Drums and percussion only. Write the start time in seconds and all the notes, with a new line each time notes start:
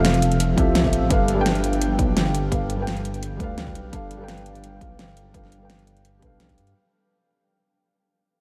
0.05 snare, closed hi-hat
0.14 closed hi-hat
0.22 closed hi-hat
0.32 closed hi-hat
0.40 closed hi-hat
0.58 kick, closed hi-hat
0.75 snare, closed hi-hat
0.84 kick
0.93 closed hi-hat
1.11 kick, closed hi-hat
1.28 closed hi-hat
1.46 snare, closed hi-hat
1.55 closed hi-hat
1.64 closed hi-hat
1.73 closed hi-hat
1.82 closed hi-hat
1.99 kick, closed hi-hat
2.17 snare, closed hi-hat
2.35 closed hi-hat
2.52 kick, closed hi-hat
2.70 closed hi-hat
2.87 snare, closed hi-hat
2.97 closed hi-hat
3.05 closed hi-hat
3.14 closed hi-hat
3.23 closed hi-hat
3.40 kick, closed hi-hat
3.58 snare, closed hi-hat
3.67 kick
3.75 closed hi-hat
3.93 kick, closed hi-hat
4.11 closed hi-hat
4.28 snare, closed hi-hat
4.38 closed hi-hat
4.46 closed hi-hat
4.55 closed hi-hat
4.64 closed hi-hat
4.81 kick, closed hi-hat
4.99 snare, closed hi-hat
5.17 closed hi-hat
5.34 kick, closed hi-hat
5.44 snare
5.52 closed hi-hat
5.70 snare, closed hi-hat
5.79 closed hi-hat
5.87 closed hi-hat
5.97 closed hi-hat
6.05 closed hi-hat
6.22 kick, closed hi-hat
6.40 snare, closed hi-hat
6.49 kick, closed hi-hat
6.58 closed hi-hat
6.67 closed hi-hat